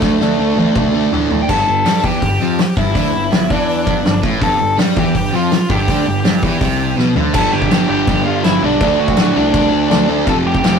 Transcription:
Already playing: lead electric guitar A3 A4
0.01 picked electric bass D2, distorted electric guitar D3 A3 D4, kick, snare
0.19 picked electric bass D2, distorted electric guitar D3 A3 D4, snare
0.38 picked electric bass D2, distorted electric guitar D3 A3 D4
0.56 picked electric bass D2, distorted electric guitar D3 A3 D4, high tom
0.75 picked electric bass D2, distorted electric guitar D3 A3 D4, kick, mid tom
0.93 picked electric bass D2, distorted electric guitar D3 A3 D4
1.11 picked electric bass A2, distorted electric guitar D3 A3 D4, floor tom
1.31 distorted electric guitar D3 A3 D4, floor tom
1.42 lead electric guitar G5
1.49 picked electric bass G1, distorted electric guitar G2, lead electric guitar A4 A5, kick, crash
1.66 picked electric bass G1, distorted electric guitar G2
1.84 picked electric bass G2, distorted electric guitar G3, snare, open hi-hat
2.03 picked electric bass E2, distorted electric guitar E3, lead electric guitar G4 G5, kick
2.22 picked electric bass G1, distorted electric guitar G2, kick, open hi-hat
2.40 picked electric bass F2, distorted electric guitar F3
2.59 muted picked electric bass stroke, muted overdriven electric guitar stroke, muted distorted electric guitar stroke, snare, open hi-hat
2.77 picked electric bass G1, distorted electric guitar G2, lead electric guitar E4 E5, kick
2.95 picked electric bass D2, distorted electric guitar D3, kick, open hi-hat
3.13 picked electric bass G1, distorted electric guitar G2
3.31 picked electric bass G1, distorted electric guitar G2, snare, open hi-hat
3.50 picked electric bass E2, distorted electric guitar E3, lead electric guitar D4 D5, kick
3.69 open hi-hat
3.87 picked electric bass G1, distorted electric guitar G2, kick
4.05 picked electric bass G1, distorted electric guitar G2, snare, open hi-hat
4.23 picked electric bass A1, distorted electric guitar A2, kick
4.42 picked electric bass G1, distorted electric guitar G2, lead electric guitar A4 A5, kick, open hi-hat
4.59 picked electric bass G1, distorted electric guitar G2
4.78 picked electric bass G2, distorted electric guitar G3, snare, open hi-hat
4.96 picked electric bass E2, distorted electric guitar E3, lead electric guitar G4 G5, kick
5.15 picked electric bass G1, distorted electric guitar G2, lead electric guitar G4 G5, kick, open hi-hat
5.33 picked electric bass F2, distorted electric guitar F3, lead electric guitar F4 F5
5.51 muted overdriven electric guitar stroke, muted distorted electric guitar stroke, muted picked electric bass stroke, snare, open hi-hat
5.70 picked electric bass G1, distorted electric guitar G2, lead electric guitar G4 G5, kick
5.88 picked electric bass D2, distorted electric guitar D3, kick, open hi-hat
6.07 picked electric bass G1, distorted electric guitar G2
6.25 picked electric bass G1, distorted electric guitar G2, snare, open hi-hat
6.43 picked electric bass E2, distorted electric guitar E3, kick
6.61 picked electric bass C2, distorted electric guitar C3, kick, open hi-hat
6.97 picked electric bass B1, distorted electric guitar B2, snare
7.16 picked electric bass D2, distorted electric guitar D3, floor tom
7.34 picked electric bass G1, distorted electric guitar G2 D3 G3, lead electric guitar A4 A5, kick, crash
7.52 picked electric bass G1, lead electric guitar G4 G5
7.62 kick
7.71 picked electric bass G1, distorted electric guitar G2 D3 G3, snare, crash
7.89 picked electric bass G1, distorted electric guitar G2 D3 G3, lead electric guitar G4 G5
8.07 picked electric bass G1, distorted electric guitar G2 D3 G3, kick, crash
8.26 picked electric bass G2, lead electric guitar F4 F5
8.44 picked electric bass G1, distorted electric guitar G2 D3 G3, lead electric guitar E4 E5, snare, crash
8.62 picked electric bass B1, distorted electric guitar G2 D3 G3, lead electric guitar D4 D5
8.80 picked electric bass D2, distorted electric guitar D3 A3 D4, kick, crash
8.99 picked electric bass D2, lead electric guitar F#4 F#5
9.08 kick
9.17 picked electric bass A2, distorted electric guitar D3 A3 D4, snare, crash
9.36 picked electric bass C2, distorted electric guitar D3 A3 D4, lead electric guitar D4 D5
9.53 picked electric bass C2, distorted electric guitar D3 A3 D4, kick, crash
9.72 picked electric bass D2
9.90 picked electric bass D2, distorted electric guitar D3 A3 D4, snare, crash
10.08 picked electric bass D2, distorted electric guitar D3 A3 D4
10.26 picked electric bass F1, distorted electric guitar F2 C3 F3, lead electric guitar A4 A5, kick, crash
10.45 picked electric bass F1, lead electric guitar G4 G5
10.54 kick
10.64 picked electric bass F1, distorted electric guitar F2 C3 F3, snare, crash

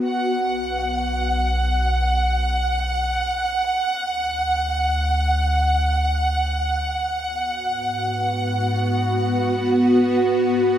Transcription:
Already playing: synth drone B3 F#4
0.04 synth drone B1, violin section F#5
3.65 synth drone D2
7.24 synth drone G#2 B3 F#4

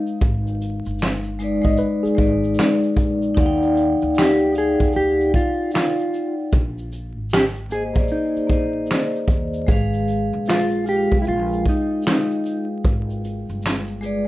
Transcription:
Already playing: vibraphone G#3 D#4 B4 F5
0.07 shaker
0.21 upright bass G#1, kick, shaker
0.47 shaker
0.61 closed hi-hat, shaker
0.85 upright bass G1, shaker
0.99 finger snap, snare, shaker
1.23 shaker
1.39 vibraphone G#3 D#4 B4, closed hi-hat, shaker
1.44 vibraphone D5
1.62 upright bass G#1, vibraphone G#3 D#4 B4, tine electric piano D#5, kick
1.67 vibraphone D5
1.77 tine electric piano B4, shaker
2.03 tine electric piano G#4, muted upright bass stroke, shaker
2.15 upright bass G#1, vibraphone G#3 D#4 B4, kick
2.20 vibraphone D5, closed hi-hat, shaker
2.44 shaker
2.55 shaker
2.59 finger snap, snare
2.84 shaker
2.97 upright bass A#1, kick, closed hi-hat, shaker
3.22 shaker
3.34 upright bass D#2, vibraphone D#4 D5 F5, kick, shaker
3.39 vibraphone F#5
3.46 vibraphone G5
3.63 shaker
3.77 closed hi-hat, shaker
4.02 upright bass D2, shaker
4.15 clean electric guitar G4, finger snap, snare, shaker
4.39 shaker
4.52 vibraphone D#4 D5 F5, closed hi-hat, shaker
4.57 clean electric guitar G#4, vibraphone G5
4.80 upright bass D#2, kick, shaker
4.93 upright bass D2, clean electric guitar G4, shaker
5.21 shaker
5.34 clean electric guitar F4, kick, closed hi-hat, shaker
5.71 clean electric guitar F4, shaker
5.75 finger snap, snare
6.00 shaker
6.14 closed hi-hat, shaker
6.52 upright bass A#1, kick, shaker
6.78 shaker
6.92 closed hi-hat, shaker
7.17 upright bass G#1
7.30 clean electric guitar G4, finger snap, snare, shaker
7.54 shaker
7.69 vibraphone A#3 G#4 C5, clean electric guitar G#4, closed hi-hat, shaker
7.74 vibraphone D#5
7.94 upright bass A#1, vibraphone A#3 G#4 C5, kick
7.98 vibraphone D5
8.08 clean electric guitar D#4, shaker
8.36 muted upright bass stroke, shaker
8.47 upright bass A#1, vibraphone A#3 G#4 C5, kick
8.52 vibraphone D#5, closed hi-hat, shaker
8.86 shaker
8.91 finger snap, snare
9.16 shaker
9.28 upright bass D#2, kick, closed hi-hat, shaker
9.54 shaker
9.67 upright bass G#1, vibraphone G#3 G#4 B4, kick, shaker
9.72 vibraphone F5
9.94 shaker
10.08 closed hi-hat, shaker
10.33 upright bass A#1
10.46 clean electric guitar F4, finger snap, snare, shaker
10.70 shaker
10.84 vibraphone G#3 F4 B4, closed hi-hat, shaker
10.89 clean electric guitar G4, vibraphone G5
10.96 vibraphone F5
11.12 upright bass B1, kick
11.22 clean electric guitar E4, shaker
11.27 upright bass A#1, clean electric guitar F4
11.53 shaker
11.66 clean electric guitar D#4, kick, closed hi-hat, shaker
12.02 shaker
12.07 clean electric guitar D#4, finger snap, snare
12.31 shaker
12.45 closed hi-hat, shaker
12.84 upright bass G#1, kick, shaker
13.10 shaker
13.25 closed hi-hat, shaker
13.49 upright bass G1, shaker
13.62 finger snap, snare, shaker
13.87 shaker
14.01 vibraphone G#3 G#4 B4, closed hi-hat, shaker
14.06 vibraphone D5

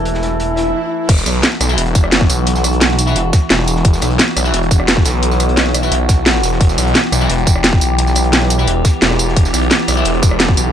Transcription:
Already playing: detuned saw bass E1, synth drone E3 A3 A4, distorted electric guitar E4 B4 E5
0.05 closed hi-hat
0.14 snare
0.23 snare, closed hi-hat
0.40 closed hi-hat, swell
0.56 snare, closed hi-hat
1.09 detuned saw bass E1, synth drone E3 B3 F#4, kick, closed hi-hat, crash
1.18 snare, tambourine
1.26 detuned saw bass B1, cross-stick, closed hi-hat, tambourine
1.34 closed hi-hat
1.43 snare, closed hi-hat
1.61 detuned saw bass B1, cross-stick, closed hi-hat, tambourine
1.69 distorted electric guitar E4 B4 E5, tambourine
1.78 detuned saw bass E1, closed hi-hat
1.86 closed hi-hat
1.95 kick, closed hi-hat, tambourine
2.04 cross-stick
2.12 snare, closed hi-hat
2.21 kick
2.29 detuned saw bass B1, closed hi-hat, tambourine
2.47 closed hi-hat
2.55 snare, tambourine
2.64 cross-stick, closed hi-hat, tambourine
2.73 closed hi-hat
2.81 snare, closed hi-hat
2.91 snare
2.99 closed hi-hat, open hi-hat, tambourine
3.07 distorted electric guitar E4 B4 E5, tambourine
3.16 detuned saw bass E1, closed hi-hat
3.33 kick, snare, closed hi-hat, tambourine
3.50 detuned saw bass E1, snare, closed hi-hat
3.59 cross-stick, snare
3.68 closed hi-hat, tambourine
3.76 snare
3.85 detuned saw bass E1, kick, closed hi-hat
3.93 snare, tambourine
4.02 detuned saw bass B1, cross-stick, closed hi-hat, tambourine
4.10 closed hi-hat
4.18 snare, closed hi-hat
4.37 detuned saw bass B1, cross-stick, closed hi-hat, tambourine
4.45 distorted electric guitar E4 B4 E5, tambourine
4.54 detuned saw bass E1, closed hi-hat
4.63 closed hi-hat
4.71 kick, closed hi-hat, tambourine
4.80 cross-stick
4.88 snare, closed hi-hat
4.97 kick
5.05 detuned saw bass B1, snare, closed hi-hat, tambourine
5.22 closed hi-hat
5.31 snare, tambourine
5.40 cross-stick, closed hi-hat, tambourine
5.49 closed hi-hat
5.57 snare, closed hi-hat
5.66 snare
5.74 cross-stick, snare, closed hi-hat, open hi-hat, tambourine
5.83 distorted electric guitar E4 B4 E5, tambourine
5.92 detuned saw bass B1, closed hi-hat
6.08 kick, snare, closed hi-hat, tambourine
6.26 snare, closed hi-hat
6.35 cross-stick, snare
6.43 detuned saw bass E1, closed hi-hat, tambourine
6.52 snare
6.61 detuned saw bass E1, synth drone G4, kick, closed hi-hat
6.69 snare, tambourine
6.78 detuned saw bass B1, cross-stick, closed hi-hat, tambourine
6.87 closed hi-hat
6.95 snare, closed hi-hat
7.12 detuned saw bass B1, cross-stick, closed hi-hat, tambourine
7.21 distorted electric guitar E4 B4 E5, tambourine
7.30 detuned saw bass E1, closed hi-hat
7.38 closed hi-hat
7.47 kick, closed hi-hat, tambourine
7.55 cross-stick
7.64 snare, closed hi-hat
7.73 kick
7.81 detuned saw bass B1, closed hi-hat, tambourine
7.98 closed hi-hat
8.06 snare, tambourine
8.15 cross-stick, closed hi-hat, tambourine
8.24 closed hi-hat
8.33 snare, closed hi-hat
8.42 snare
8.50 closed hi-hat, open hi-hat, tambourine
8.59 distorted electric guitar E4 B4 E5, tambourine
8.68 detuned saw bass E1, closed hi-hat
8.85 kick, snare, closed hi-hat, tambourine
9.02 detuned saw bass E1, snare, closed hi-hat
9.10 cross-stick, snare
9.19 closed hi-hat, tambourine
9.29 snare
9.36 detuned saw bass E1, kick, closed hi-hat
9.45 snare, tambourine
9.54 detuned saw bass B1, cross-stick, closed hi-hat, tambourine
9.71 snare, closed hi-hat
9.88 detuned saw bass B1, cross-stick, closed hi-hat, tambourine
9.97 distorted electric guitar E4 B4 E5, tambourine
10.05 detuned saw bass E1, closed hi-hat
10.14 closed hi-hat
10.23 kick, closed hi-hat, tambourine
10.31 cross-stick
10.39 snare, closed hi-hat
10.49 kick
10.57 detuned saw bass B1, closed hi-hat, tambourine

